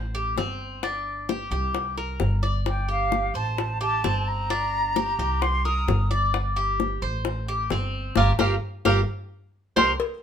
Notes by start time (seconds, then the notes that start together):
Already playing: A1 C5
0.15 G4
0.36 G1 C4, high bongo, low bongo
0.83 D4, high bongo
1.29 G4, high bongo
1.51 C2 G4, high bongo
1.75 high bongo
1.98 A#4, high bongo
2.20 G1, high bongo, low bongo
2.43 D5, high bongo
2.66 G5, high bongo
2.89 G4 F5
3.12 high bongo
3.34 A1 C5 A5
3.58 high bongo
3.81 G4 A5
4.04 G1 C4, high bongo, low bongo
4.28 A#5
4.50 D4, high bongo
4.96 G4, high bongo
5.19 C2 G4, high bongo
5.42 C6, high bongo
5.65 A#4 D#6, high bongo
5.88 G1, high bongo, low bongo
6.11 D5, high bongo
6.34 high bongo
6.56 G4
6.80 high bongo
7.02 A1 C5
7.25 high bongo
7.48 G4
7.70 G1 C4, high bongo, low bongo
8.16 G1 F4 G4 A#4 D6, high bongo
8.39 G1 F4 G4 A#4 D6, high bongo
8.85 G1 F4 G4 A#4 D6, high bongo
9.76 C2 G4 A#4 C5 C6, high bongo
10.00 cowbell